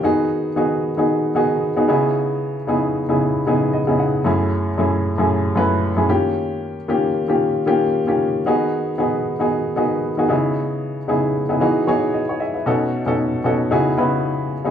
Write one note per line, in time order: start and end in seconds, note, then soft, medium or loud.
0.03 0.48 D#3 medium
0.03 0.48 B3 medium
0.03 0.48 D#4 medium
0.03 0.49 F#4 medium
0.03 0.49 G#4 loud
0.56 0.90 D#3 medium
0.56 0.90 B3 medium
0.56 0.90 D#4 medium
0.56 0.90 F#4 medium
0.56 0.90 G#4 medium
0.97 1.29 D#3 medium
0.97 1.29 B3 medium
0.97 1.30 D#4 medium
0.97 1.30 F#4 medium
0.97 1.30 G#4 medium
1.35 1.69 D#3 medium
1.35 1.69 B3 medium
1.35 1.69 D#4 medium
1.35 1.69 F#4 medium
1.35 1.69 G#4 loud
1.76 1.88 D#3 medium
1.76 1.87 B3 medium
1.76 1.87 D#4 medium
1.76 1.88 F#4 medium
1.76 1.88 G#4 medium
1.88 2.55 C#3 medium
1.88 2.55 B3 medium
1.88 2.55 D#4 medium
1.88 2.55 E4 medium
1.88 2.56 G#4 medium
2.67 3.01 C#3 medium
2.67 3.01 B3 medium
2.67 3.01 D#4 medium
2.67 3.01 E4 medium
2.67 3.01 G#4 medium
3.09 3.40 C#3 medium
3.09 3.40 B3 medium
3.09 3.40 D#4 medium
3.09 3.41 E4 medium
3.09 3.41 G#4 medium
3.47 3.80 C#3 medium
3.47 3.80 B3 medium
3.47 3.80 D#4 medium
3.47 3.80 E4 medium
3.47 3.81 G#4 medium
3.73 3.97 D#5 medium
3.87 4.19 C#3 medium
3.87 4.19 B3 medium
3.87 4.19 D#4 medium
3.87 4.19 E4 medium
3.87 4.20 G#4 medium
3.99 4.23 F#5 medium
4.24 4.69 F#2 medium
4.24 4.70 A3 medium
4.24 4.70 C#4 medium
4.24 4.70 E4 medium
4.24 4.70 G#4 medium
4.78 5.11 F#2 medium
4.78 5.11 A3 medium
4.78 5.11 C#4 medium
4.78 5.12 E4 medium
4.78 5.12 G#4 medium
5.18 5.50 F#2 medium
5.18 5.50 A3 medium
5.18 5.50 C#4 medium
5.18 5.51 E4 medium
5.18 5.51 G#4 medium
5.55 5.89 F#2 medium
5.55 5.90 A3 medium
5.55 5.90 C#4 medium
5.55 5.90 E4 medium
5.55 5.90 B4 loud
5.96 6.08 F#2 medium
5.96 6.08 A3 medium
5.96 6.07 C#4 medium
5.96 6.09 E4 medium
5.96 6.09 G#4 medium
6.09 6.76 D#3 medium
6.09 6.76 A#3 medium
6.09 6.76 C#4 medium
6.09 6.76 F4 medium
6.09 6.76 G4 medium
6.88 7.22 D#3 medium
6.88 7.22 A#3 medium
6.88 7.22 C#4 medium
6.88 7.22 F4 medium
6.88 7.22 G4 medium
7.28 7.60 D#3 medium
7.28 7.61 A#3 medium
7.28 7.61 C#4 medium
7.28 7.61 F4 medium
7.28 7.61 G4 medium
7.66 8.00 D#3 medium
7.66 8.00 A#3 medium
7.66 8.00 C#4 medium
7.66 8.00 F4 medium
7.66 8.01 G4 loud
8.07 8.39 D#3 medium
8.07 8.39 A#3 medium
8.07 8.40 C#4 medium
8.07 8.40 F4 medium
8.07 8.40 G4 medium
8.46 8.90 D#3 medium
8.46 8.91 B3 medium
8.46 8.91 D#4 medium
8.46 8.91 F#4 medium
8.46 8.91 G#4 medium
8.98 9.32 D#3 medium
8.98 9.32 B3 medium
8.98 9.32 D#4 medium
8.98 9.32 F#4 medium
8.98 9.32 G#4 medium
9.39 9.71 D#3 medium
9.39 9.71 B3 medium
9.39 9.71 D#4 medium
9.39 9.71 F#4 medium
9.39 9.72 G#4 medium
9.76 10.10 D#3 medium
9.76 10.10 B3 medium
9.76 10.10 D#4 medium
9.76 10.11 F#4 medium
9.76 10.11 G#4 medium
10.17 10.29 D#3 medium
10.17 10.27 B3 medium
10.17 10.28 D#4 medium
10.17 10.30 F#4 medium
10.17 10.29 G#4 medium
10.29 10.96 C#3 medium
10.29 10.96 B3 medium
10.29 10.96 D#4 medium
10.29 10.96 E4 medium
10.29 10.97 G#4 medium
11.08 11.41 C#3 medium
11.08 11.42 B3 medium
11.08 11.42 D#4 medium
11.08 11.42 E4 medium
11.08 11.42 G#4 medium
11.49 11.61 C#3 medium
11.49 11.59 B3 medium
11.49 11.60 D#4 medium
11.49 11.61 E4 medium
11.49 11.60 G#4 medium
11.60 11.83 E3 medium
11.60 11.83 B3 medium
11.60 11.83 D#4 medium
11.60 11.83 F#4 medium
11.60 11.83 G#4 medium
11.87 12.20 E3 medium
11.87 12.21 B3 medium
11.87 12.21 D#4 medium
11.87 12.21 F#4 medium
11.87 12.14 G#4 loud
11.87 12.12 C#5 medium
12.14 12.38 D#5 medium
12.29 12.39 G#4 soft
12.29 12.40 C#5 medium
12.40 12.54 G#4 medium
12.40 12.54 D#5 medium
12.40 12.53 E5 medium
12.54 12.79 B4 soft
12.54 12.79 E5 medium
12.66 12.99 B2 medium
12.66 12.99 C#4 medium
12.66 13.00 D#4 medium
12.66 13.00 F#4 medium
12.66 13.00 A4 loud
13.06 13.38 B2 medium
13.06 13.38 C#4 medium
13.06 13.39 D#4 medium
13.06 13.39 F#4 medium
13.06 13.39 A4 medium
13.44 13.71 B2 medium
13.44 13.71 C#4 medium
13.44 13.69 D#4 medium
13.44 13.70 F#4 medium
13.44 13.72 A4 medium
13.71 13.93 C#3 medium
13.71 13.93 B3 medium
13.71 13.93 D#4 medium
13.71 13.93 E4 medium
13.71 13.94 F#4 medium
13.71 13.94 G#4 loud
13.97 14.52 C#3 medium
13.97 14.52 B3 medium
13.97 14.52 D#4 medium
13.97 14.52 E4 medium
13.97 14.52 F#4 medium
13.97 14.53 B4 medium
14.64 14.71 C#3 medium
14.64 14.71 B3 medium
14.64 14.71 D#4 medium
14.64 14.71 E4 medium
14.64 14.71 F#4 medium
14.64 14.71 G#4 medium